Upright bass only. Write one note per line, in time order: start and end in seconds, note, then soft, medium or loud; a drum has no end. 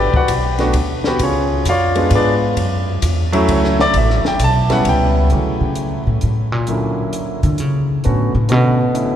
0.00 0.12 G1 medium
0.13 muted upright bass stroke soft
0.29 0.73 B1 medium
0.74 1.19 D2 loud
1.20 1.64 C#2 medium
1.65 2.10 F2 medium
2.11 2.55 G#2 medium
2.57 3.01 F#2 medium
3.02 3.47 E2 medium
3.49 3.92 C#2 medium
3.94 4.22 A1 medium
4.40 4.83 B1 loud
4.85 5.29 C#2 medium
5.33 5.60 D3 medium
5.61 6.03 C#3 medium
6.07 6.21 A2 medium
6.23 6.52 A2 medium
6.52 7.12 A#2 medium
7.43 7.60 D3 medium
7.60 8.04 C#3 medium
8.06 8.34 A2 medium
8.35 8.52 A2 medium
8.52 9.16 B2 medium